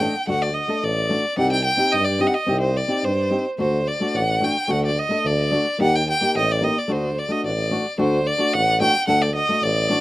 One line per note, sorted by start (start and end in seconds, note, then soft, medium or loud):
0.00 0.13 A3 medium
0.00 0.14 D4 soft
0.00 0.14 A4 medium
0.00 0.27 G5 medium
0.27 0.61 D2 medium
0.27 0.48 A3 medium
0.27 0.48 D4 medium
0.27 0.49 F#4 medium
0.27 0.43 F#5 medium
0.42 0.55 D5 medium
0.54 0.85 D#5 medium
0.68 0.89 A3 medium
0.68 0.89 D4 soft
0.68 0.90 A4 medium
0.83 1.16 A1 medium
0.83 1.38 D5 medium
1.09 1.24 A3 medium
1.09 1.24 D4 medium
1.09 1.24 F#4 medium
1.37 1.72 C2 medium
1.37 1.58 C4 medium
1.37 1.58 D#4 medium
1.37 1.59 G4 medium
1.37 1.51 F#5 medium
1.52 1.64 G5 loud
1.64 1.94 G5 medium
1.77 1.99 C4 medium
1.77 1.99 D#4 medium
1.77 2.00 G4 medium
1.92 2.27 G2 medium
1.92 2.06 D#5 medium
2.04 2.22 D5 medium
2.19 2.34 C4 medium
2.19 2.34 D#4 medium
2.19 2.35 G4 medium
2.19 2.29 D#5 medium
2.27 2.36 F#5 medium
2.34 2.60 D#5 medium
2.46 2.82 C2 medium
2.46 2.68 C4 medium
2.46 2.69 D#4 medium
2.46 2.69 G4 medium
2.61 2.78 C5 medium
2.77 3.05 D5 medium
2.88 3.10 C4 medium
2.88 3.10 D#4 soft
2.88 3.10 G4 medium
3.04 3.37 G2 medium
3.04 3.45 C5 medium
3.30 3.45 C4 medium
3.30 3.45 D#4 medium
3.30 3.45 G4 medium
3.58 3.92 D2 medium
3.58 3.79 A3 medium
3.58 3.80 D4 medium
3.58 3.80 F#4 medium
3.58 3.89 C5 medium
3.88 4.17 D5 medium
4.00 4.21 A3 medium
4.00 4.21 D4 soft
4.00 4.22 F#4 medium
4.14 4.47 A1 medium
4.14 4.46 F#5 medium
4.41 4.55 A3 medium
4.41 4.55 D4 soft
4.41 4.56 F#4 medium
4.41 4.72 G5 medium
4.68 5.02 D2 medium
4.68 4.89 A3 medium
4.68 4.89 D4 medium
4.68 4.90 F#4 medium
4.68 4.84 F#5 medium
4.86 5.01 D5 medium
4.99 5.28 D#5 medium
5.09 5.30 A3 medium
5.09 5.31 D4 medium
5.09 5.31 A4 medium
5.24 5.57 D2 medium
5.24 5.80 D5 medium
5.51 5.65 A3 soft
5.51 5.65 D4 medium
5.51 5.66 F#4 medium
5.78 6.13 D#2 medium
5.78 5.99 A#3 medium
5.78 6.00 D#4 medium
5.78 6.01 G4 medium
5.78 5.97 F#5 medium
5.96 6.08 G5 medium
6.10 6.34 G5 medium
6.21 6.41 A#3 medium
6.21 6.42 D#4 soft
6.21 6.42 G4 medium
6.35 6.68 A1 medium
6.35 6.53 D#5 medium
6.51 6.65 D5 medium
6.61 6.75 A#3 medium
6.61 6.76 D#4 medium
6.61 6.76 G4 medium
6.61 6.80 D#5 medium
6.78 6.93 D5 medium
6.88 7.22 D2 medium
6.88 7.09 A3 medium
6.88 7.09 D4 medium
6.88 7.10 F#4 medium
6.88 7.20 C5 medium
7.18 7.33 D5 medium
7.28 7.50 A3 medium
7.28 7.50 D4 medium
7.28 7.51 F#4 medium
7.28 7.44 D#5 medium
7.44 7.77 A1 medium
7.44 7.96 D5 medium
7.71 7.84 A3 medium
7.71 7.85 D4 soft
7.71 7.85 F#4 medium
7.98 8.32 D2 medium
7.98 8.19 A3 medium
7.98 8.19 D4 medium
7.98 8.19 F#4 medium
7.98 8.28 C5 medium
8.26 8.55 D5 medium
8.38 8.59 A3 medium
8.38 8.59 D4 soft
8.38 8.60 F#4 medium
8.53 8.86 A1 medium
8.53 8.80 F#5 loud
8.80 8.94 A3 medium
8.80 8.94 D4 medium
8.80 8.95 F#4 medium
8.80 9.07 G5 medium
9.07 9.41 D2 medium
9.07 9.28 A3 medium
9.07 9.28 D4 medium
9.07 9.29 A4 medium
9.07 9.23 F#5 medium
9.22 9.35 D5 medium
9.35 9.64 D#5 medium
9.49 9.69 A3 medium
9.49 9.69 D4 medium
9.49 9.70 F#4 medium
9.62 9.95 A1 medium
9.62 10.01 D5 loud
9.89 10.01 A3 medium
9.89 10.01 D4 medium
9.89 10.01 F#4 medium